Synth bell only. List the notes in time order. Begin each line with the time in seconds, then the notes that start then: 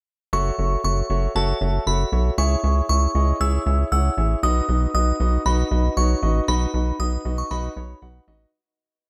0.33 C#6
0.84 C#6
1.36 A5
1.87 B5
2.38 C#6
2.89 C#6
3.41 E6
3.92 E6
4.43 D#6
4.95 D#6
5.46 B5
5.97 C#6
6.48 B5
7.00 D#6
7.38 C#6
7.51 B5